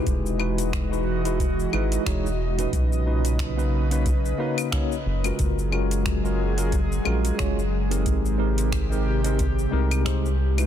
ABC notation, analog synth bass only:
X:1
M:4/4
L:1/8
Q:"Swing 16ths" 1/4=90
K:F#
V:1 name="Analog synth bass" clef=bass
=E,,,4- E,,, G,,, E,,,2 | B,,,4- B,,, z2 F,,, | F,,,4- F,,, A,,, F,,,2 | G,,,4- G,,, ^B,,,3 |]